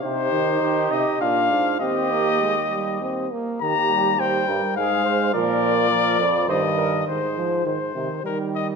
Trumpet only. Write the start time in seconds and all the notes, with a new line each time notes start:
0.03 C5
0.91 D#5
1.21 F5
1.80 D#5
3.61 A#5
4.20 G5
4.76 F5
5.34 D5
6.50 D#5
7.08 C5
7.67 C5
8.26 A#4
8.55 D#5